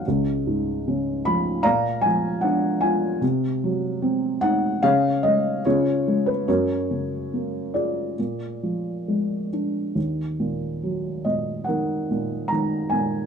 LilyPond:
<<
  \new Staff \with { instrumentName = "Felt piano" } { \time 4/4 \key ais \phrygian \tempo 4 = 73 << { r4. b''8 ais''8 gis''8 fis''8 gis''8 | r4. ges''8 eis''8 dis''8 cis''8. b'16 | cis''4. d''2 r8 | \key ees \minor r4. ees''8 ges''4 bes''8 aes''8 | } \\ { r2 <d'' eis''>2 | r2 <gis' cis''>4 <eis' gis'>4 | <fis' ais'>4. <eis' gis'>2 r8 | r2 bes'2 | } >> }
  \new Staff \with { instrumentName = "Felt piano" } { \clef bass \time 4/4 \key ais \phrygian cis,8 gis,8 cis8 eis8 ais,8 eis8 d'8 eis'8 | c8 ges8 c'8 ees'8 cis8 gis8 cis8 gis8 | fis,8 cis8 ais4 ais,8 eis8 gis8 d'8 | \key ees \minor ees,8 bes,8 ges8 bes,8 ees8 bes,8 ees8 bes,8 | }
>>